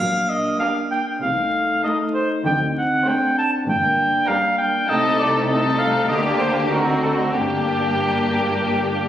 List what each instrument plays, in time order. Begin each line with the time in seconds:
Already playing: french horn section D4
0.00 double bass section A#1, cello section A#2, french horn section A#3, cor anglais F5
0.29 cor anglais D#5
0.59 viola section A#3, violin section D4 G4, cor anglais F5
0.91 cor anglais G5
1.22 double bass section C2, cello section C3, french horn section A3 D#4, cor anglais F5
1.84 viola section A3, violin section D#4 A4, cor anglais D#5
2.14 cor anglais C5
2.45 double bass section D2, cello section D3, french horn section C4, cor anglais G5
2.78 cor anglais F#5
3.06 viola section A3, french horn section D4, violin section D4 C5, cor anglais G5
3.38 cor anglais A5
3.67 double bass section G1, cello section G2, french horn section A#3, cor anglais G5
4.27 viola section G3, violin section D4 A#4, cor anglais F5
4.58 cor anglais G5
4.87 double bass section C2, cello section C3, viola section A3, french horn section A3 D#4, violin section D#4 A4, cor anglais D#5
5.19 cor anglais D5
5.48 viola section A3, french horn section A3 D#4, violin section D#4 A4, cor anglais D#5
5.78 french horn section F4, cor anglais F5
6.09 double bass section D2, cello section D3, french horn section A#3 G4, viola section A#3, violin section D4 G4, cor anglais D#5
6.25 cor anglais D5
6.40 cor anglais C5
6.70 french horn section C4 F#4, viola section C4, violin section D#4 F#4, cor anglais A#4
7.02 cor anglais A4
7.33 double bass section G1, cello section G2, viola section A#3, french horn section A#3 G4, violin section D4 G4, cor anglais G4